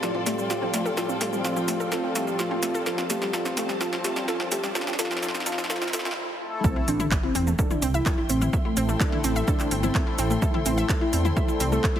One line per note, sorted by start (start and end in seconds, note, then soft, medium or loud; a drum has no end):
0.00 6.13 A2 medium
0.00 6.13 C4 medium
0.00 0.20 F4 loud
0.00 6.13 G4 medium
0.00 6.13 A4 medium
0.00 6.17 A4 medium
0.00 0.12 A4 medium
0.00 6.17 D5 medium
0.00 6.13 F5 medium
0.00 3.00 G5 medium
0.00 6.17 C6 medium
0.00 snare medium
0.00 riser medium
0.00 shaker soft
0.15 0.23 C4 medium
0.15 mid tom medium
0.26 0.35 A3 loud
0.26 0.52 G4 medium
0.26 snare medium
0.26 open hi-hat loud
0.26 shaker medium
0.38 0.47 G3 medium
0.38 shaker soft
0.50 0.61 F4 medium
0.50 snare medium
0.50 shaker soft
0.62 0.67 C4 medium
0.62 0.87 F4 medium
0.74 0.82 F3 loud
0.74 0.82 A3 medium
0.74 0.82 C4 medium
0.74 0.82 F4 loud
0.74 snare medium
0.74 open hi-hat loud
0.74 shaker medium
0.86 0.94 A4 loud
0.86 mid tom medium
0.86 shaker soft
0.97 1.14 F4 medium
0.97 1.06 A4 medium
0.97 snare medium
0.97 shaker soft
1.09 1.18 C4 medium
1.09 shaker soft
1.21 2.13 F3 medium
1.21 1.30 A3 medium
1.21 2.13 C4 medium
1.21 2.13 F4 medium
1.21 1.46 G4 medium
1.21 snare medium
1.21 open hi-hat loud
1.21 shaker medium
1.33 1.41 G3 medium
1.33 shaker soft
1.45 1.56 F4 medium
1.45 snare medium
1.45 shaker soft
1.56 1.62 C4 medium
1.56 1.82 F4 medium
1.56 mid tom medium
1.56 shaker soft
1.68 1.77 A3 loud
1.68 snare medium
1.68 open hi-hat loud
1.68 shaker medium
1.80 1.89 A4 loud
1.80 shaker soft
1.92 2.09 F4 loud
1.92 2.01 A4 medium
1.92 snare medium
1.92 shaker soft
2.04 2.12 C4 medium
2.15 4.49 F3 medium
2.15 2.24 A3 loud
2.15 4.49 C4 medium
2.15 4.49 F4 medium
2.15 2.41 G4 medium
2.15 snare medium
2.15 open hi-hat medium
2.15 shaker medium
2.27 2.36 G3 medium
2.27 mid tom medium
2.27 shaker soft
2.39 2.50 F4 medium
2.39 snare medium
2.39 shaker soft
2.51 2.56 C4 medium
2.51 2.76 F4 medium
2.63 2.71 A3 loud
2.63 snare medium
2.63 open hi-hat loud
2.63 shaker medium
2.75 2.83 A4 loud
2.75 shaker soft
2.86 3.03 F4 loud
2.86 2.95 A4 medium
2.86 6.17 A5 medium
2.86 snare medium
2.86 shaker soft
2.98 3.07 C4 medium
2.98 snare medium
2.98 mid tom medium
2.98 shaker soft
3.10 3.19 A3 loud
3.10 3.32 G4 medium
3.10 snare medium
3.10 open hi-hat loud
3.10 shaker medium
3.22 3.30 G3 medium
3.22 snare medium
3.22 shaker soft
3.33 3.51 F4 medium
3.33 3.42 A4 medium
3.33 snare loud
3.33 shaker soft
3.45 3.54 C4 medium
3.45 snare medium
3.45 shaker soft
3.57 3.66 A3 loud
3.57 3.79 G4 loud
3.57 snare medium
3.57 open hi-hat medium
3.57 shaker medium
3.69 3.78 G3 medium
3.69 snare medium
3.69 mid tom medium
3.69 shaker soft
3.81 3.98 F4 loud
3.81 3.90 A4 medium
3.81 snare medium
3.81 shaker soft
3.93 4.01 C4 medium
3.93 snare medium
4.04 4.13 A3 loud
4.04 4.26 G4 medium
4.04 snare medium
4.04 open hi-hat loud
4.04 shaker medium
4.16 4.25 G3 medium
4.16 snare medium
4.16 shaker soft
4.28 4.45 F4 loud
4.28 4.37 A4 medium
4.28 snare loud
4.28 shaker soft
4.40 4.49 C4 medium
4.40 snare medium
4.40 mid tom loud
4.52 4.60 F3 loud
4.52 4.60 A3 loud
4.52 4.60 C4 medium
4.52 4.60 F4 loud
4.52 4.73 G4 loud
4.52 snare loud
4.52 open hi-hat loud
4.52 shaker medium
4.64 4.72 G3 medium
4.64 snare medium
4.64 shaker soft
4.75 4.92 F4 loud
4.75 4.84 A4 medium
4.75 snare loud
4.75 shaker soft
4.81 snare medium
4.87 4.96 C4 medium
4.87 snare medium
4.87 shaker soft
4.93 snare medium
4.99 5.91 F3 medium
4.99 5.91 C4 medium
4.99 5.91 F4 medium
4.99 5.16 F4 loud
4.99 5.08 A4 medium
4.99 snare loud
4.99 open hi-hat loud
4.99 shaker medium
5.05 snare medium
5.11 5.19 C4 medium
5.11 snare medium
5.11 mid tom medium
5.11 shaker soft
5.17 snare medium
5.22 5.40 F4 loud
5.22 5.31 A4 medium
5.22 snare loud
5.22 shaker soft
5.29 snare medium
5.34 5.43 C4 medium
5.34 snare medium
5.34 shaker soft
5.40 snare medium
5.46 5.63 F4 loud
5.46 5.55 A4 medium
5.46 snare loud
5.46 open hi-hat medium
5.46 shaker medium
5.52 snare medium
5.58 5.67 C4 medium
5.58 snare medium
5.58 shaker soft
5.64 snare medium
5.70 5.87 F4 loud
5.70 5.79 A4 medium
5.70 snare loud
5.70 shaker soft
5.76 snare loud
5.82 5.90 C4 medium
5.82 snare medium
5.82 mid tom medium
5.82 shaker soft
5.88 snare loud
5.93 6.10 F4 loud
5.93 6.02 A4 medium
5.93 snare loud
5.93 open hi-hat loud
5.93 shaker medium
5.99 snare loud
6.05 6.14 C4 medium
6.05 snare loud
6.05 shaker soft
6.11 snare medium
6.41 6.88 A3 medium
6.41 6.88 E4 medium
6.41 6.88 A4 loud
6.64 6.81 C4 loud
6.64 6.73 A4 loud
6.64 12.00 A4 medium
6.64 12.00 C5 medium
6.64 10.38 E5 medium
6.64 12.00 C6 medium
6.64 kick loud
6.64 sub drop medium
6.64 shaker soft
6.76 6.81 E4 medium
6.88 7.06 A1 loud
6.88 6.93 C4 medium
6.88 7.13 D4 medium
6.88 open hi-hat loud
6.88 shaker medium
7.00 7.08 E4 loud
7.00 mid tom medium
7.00 shaker soft
7.11 7.20 E5 medium
7.11 kick loud
7.11 clap loud
7.11 shaker soft
7.23 7.49 C4 loud
7.23 7.32 E4 medium
7.35 7.53 E2 medium
7.35 7.44 C4 loud
7.35 open hi-hat loud
7.35 shaker medium
7.47 7.56 A3 medium
7.47 shaker soft
7.59 7.84 D4 medium
7.59 7.70 A4 medium
7.59 kick loud
7.59 shaker soft
7.71 7.76 E4 loud
7.71 mid tom medium
7.71 shaker soft
7.76 12.00 G5 medium
7.82 8.01 C2 medium
7.82 7.91 C4 loud
7.82 open hi-hat loud
7.82 shaker medium
7.94 8.20 E4 loud
7.94 8.03 E5 loud
7.94 shaker soft
8.04 8.15 A4 loud
8.04 12.00 C6 medium
8.04 kick loud
8.04 clap loud
8.04 shaker soft
8.18 8.23 E4 medium
8.29 8.48 A1 medium
8.29 8.38 A3 loud
8.29 8.55 C4 loud
8.29 8.35 C4 medium
8.29 8.38 E4 medium
8.29 8.38 A4 loud
8.29 open hi-hat loud
8.29 shaker medium
8.41 8.50 E4 loud
8.41 mid tom medium
8.41 shaker soft
8.53 8.62 E5 medium
8.53 kick loud
8.53 shaker soft
8.65 8.91 A3 loud
8.65 8.74 E4 medium
8.77 8.95 A1 loud
8.77 9.68 A3 medium
8.77 8.86 C4 loud
8.77 9.68 E4 medium
8.77 9.68 A4 medium
8.77 open hi-hat loud
8.77 shaker medium
8.89 8.97 A3 medium
8.89 shaker soft
9.00 9.17 D4 medium
9.00 9.12 A4 medium
9.00 kick loud
9.00 clap loud
9.00 shaker soft
9.12 9.18 E4 loud
9.12 mid tom medium
9.24 9.42 A1 loud
9.24 9.33 C4 loud
9.24 open hi-hat loud
9.24 shaker medium
9.36 9.45 E5 loud
9.36 shaker soft
9.48 9.73 D4 loud
9.48 9.56 A4 loud
9.48 kick loud
9.48 shaker soft
9.60 9.65 E4 medium
9.60 clap soft
9.60 shaker soft
9.71 9.90 G1 loud
9.71 12.00 A3 medium
9.71 9.77 C4 medium
9.71 12.00 E4 medium
9.71 12.00 A4 medium
9.71 open hi-hat loud
9.71 shaker medium
9.83 10.00 C4 medium
9.83 9.92 E4 loud
9.83 mid tom medium
9.83 shaker soft
9.95 10.04 E5 medium
9.95 kick loud
9.95 clap loud
9.95 shaker soft
10.07 10.15 E4 medium
10.18 10.37 A1 medium
10.18 10.27 C4 loud
10.18 open hi-hat loud
10.18 shaker medium
10.30 10.39 A3 medium
10.30 shaker soft
10.42 10.59 E4 loud
10.42 10.53 A4 medium
10.42 12.00 D5 medium
10.42 kick loud
10.42 shaker soft
10.54 10.59 E4 loud
10.54 mid tom medium
10.66 10.84 A1 loud
10.66 10.75 C4 loud
10.66 10.91 E4 loud
10.66 open hi-hat loud
10.66 shaker medium
10.78 10.86 E5 loud
10.78 shaker soft
10.89 10.98 A4 loud
10.89 kick loud
10.89 clap loud
10.89 shaker soft
11.01 11.06 E4 medium
11.01 11.27 E4 loud
11.13 11.31 E2 medium
11.13 11.18 C4 medium
11.13 open hi-hat loud
11.13 shaker medium
11.25 11.34 E4 loud
11.25 mid tom medium
11.25 shaker soft
11.37 11.62 E4 medium
11.37 11.45 E5 medium
11.37 kick loud
11.37 shaker soft
11.48 11.57 E4 medium
11.48 shaker soft
11.60 11.79 C2 medium
11.60 11.69 C4 loud
11.60 open hi-hat loud
11.60 shaker medium
11.72 11.81 A3 medium
11.72 11.98 A4 loud
11.72 shaker soft
11.84 11.95 A4 medium
11.84 kick loud
11.84 clap loud
11.84 shaker soft
11.96 12.00 E4 loud
11.96 mid tom medium